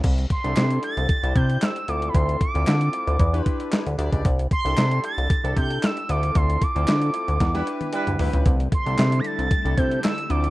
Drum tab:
CC |x---------------|----------------|----------------|----------------|
HH |xxxxxxxxxxxxxxxx|xxxxxxxxxxxxxxxx|xxxxxxxxxxxxxxxx|xxxxxxxxxxxxxxox|
CP |----x-------x---|----x-------x---|----x-------x---|----x-----------|
SD |----o-------o---|----o-------o---|----o-------o---|----o---oo------|
T1 |----------------|----------------|----------------|-----------o----|
T2 |----------------|----------------|----------------|-------------o--|
FT |----------------|----------------|----------------|--------------oo|
BD |o-o-----o-o-----|o-o-----o-o----o|o-o-----o-o-----|o-o-----o-------|

CC |----------------|
HH |xxxxxxxxxxxxxxxx|
CP |----x-------x---|
SD |----o-------o---|
T1 |----------------|
T2 |----------------|
FT |----------------|
BD |o-o-----o-o-----|